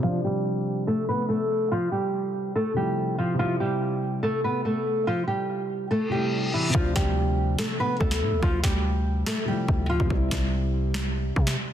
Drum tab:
SD |----------------|----------------|----------------|----------------|
BD |----------------|----------------|----------------|----------------|

SD |--o-----o----o--|--o-----o-------|--o-----o----o--|
BD |o-o---------o---|o-o---------o--o|o-o---------o---|